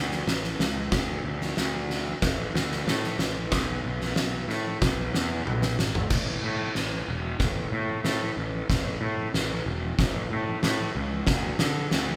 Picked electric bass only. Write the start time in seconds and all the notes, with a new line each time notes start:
Already playing: D2
0.27 A1
0.59 C#2
0.92 D2
1.25 D2
1.58 D2
2.22 A1
2.54 D2
2.87 A2
3.19 A1
3.52 B1
3.85 B1
4.16 B1
4.48 A2
4.82 B1
5.13 E2
5.46 B1
5.79 G#1
6.10 A1
6.43 A2
6.77 A1
7.08 E1
7.40 A1
7.72 A2
8.04 A2
8.37 A1
8.70 A1
9.01 A2
9.34 A1
9.66 E1
9.99 A1
10.31 A2
10.64 A2
10.96 C#2
11.27 D2
11.61 D3
11.92 D2